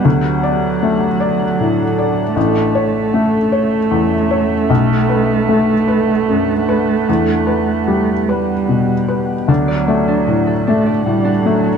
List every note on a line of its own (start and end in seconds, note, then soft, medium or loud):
0.03 2.32 D2 medium
0.03 2.35 F#3 medium
0.03 2.36 D4 medium
0.03 4.67 A4 medium
0.03 2.32 F#5 medium
0.43 1.05 D5 soft
0.83 1.44 A3 soft
1.20 1.82 D5 soft
1.60 2.21 A2 soft
1.98 2.36 D5 soft
2.34 4.66 A1 medium
2.34 8.30 A3 medium
2.34 4.69 C#4 medium
2.34 4.69 E5 medium
2.75 3.37 C#5 soft
3.14 3.76 A3 soft
3.52 4.15 C#5 soft
3.91 4.53 E2 soft
4.31 4.70 C#5 soft
4.68 7.04 B1 soft
4.68 7.07 D4 medium
4.68 7.03 A4 medium
4.68 9.48 F#5 medium
5.09 5.72 B4 soft
5.49 6.12 A3 soft
5.88 6.52 B4 soft
6.29 6.92 F#2 soft
6.69 7.08 B4 soft
7.08 9.45 E2 soft
7.08 9.48 B3 medium
7.08 9.49 G4 medium
7.47 8.12 B4 soft
7.88 8.52 G3 soft
8.29 9.29 G3 soft
8.29 8.93 B4 soft
8.69 9.33 B2 soft
9.08 9.48 B4 soft
9.48 11.78 D2 soft
9.48 10.71 F#3 medium
9.48 10.07 D4 medium
9.48 11.78 D4 medium
9.48 11.78 A4 medium
9.48 11.78 F#5 medium
9.68 9.86 D5 soft
9.88 10.52 A3 soft
9.88 10.85 D5 soft
10.08 10.66 D4 medium
10.27 10.90 A2 soft
10.27 11.05 F#4 soft
10.47 11.78 A4 soft
10.67 11.30 A3 soft
10.67 11.07 A3 soft
10.67 11.23 D4 medium
10.86 11.78 D5 soft
11.06 11.68 A2 soft
11.06 11.47 G3 medium
11.06 11.63 F#4 soft
11.25 11.78 D4 medium
11.45 11.78 F#3 medium
11.45 11.78 A3 soft
11.64 11.78 F#4 soft